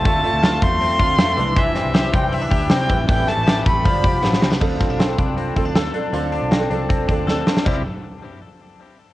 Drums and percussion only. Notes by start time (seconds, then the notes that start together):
0.05 kick, hi-hat pedal, open hi-hat
0.24 hi-hat pedal, open hi-hat
0.43 snare, hi-hat pedal, open hi-hat
0.62 kick, hi-hat pedal, open hi-hat
0.81 hi-hat pedal, open hi-hat
0.99 kick, hi-hat pedal, open hi-hat
1.19 snare, hi-hat pedal, open hi-hat
1.37 hi-hat pedal, open hi-hat
1.56 kick, hi-hat pedal, open hi-hat
1.75 snare, hi-hat pedal, open hi-hat
1.94 snare, hi-hat pedal, open hi-hat
2.14 kick, hi-hat pedal, open hi-hat
2.32 hi-hat pedal, open hi-hat
2.51 kick, hi-hat pedal, open hi-hat
2.70 snare, hi-hat pedal, open hi-hat
2.89 kick, hi-hat pedal, open hi-hat
3.09 kick, hi-hat pedal, open hi-hat
3.28 snare, hi-hat pedal, open hi-hat
3.47 snare, hi-hat pedal, open hi-hat
3.66 kick, hi-hat pedal, open hi-hat
3.85 kick, hi-hat pedal, open hi-hat
4.04 kick, hi-hat pedal, open hi-hat
4.24 snare
4.33 snare
4.42 snare
4.51 snare
4.61 kick, crash
4.80 kick, snare, closed hi-hat
4.99 snare, closed hi-hat
5.18 kick, closed hi-hat
5.38 closed hi-hat
5.56 kick, closed hi-hat
5.75 snare, closed hi-hat
5.94 closed hi-hat
6.14 closed hi-hat
6.32 closed hi-hat
6.51 snare, closed hi-hat
6.71 closed hi-hat
6.90 kick, closed hi-hat
7.09 kick, closed hi-hat
7.28 snare
7.47 snare
7.57 snare
7.66 kick, crash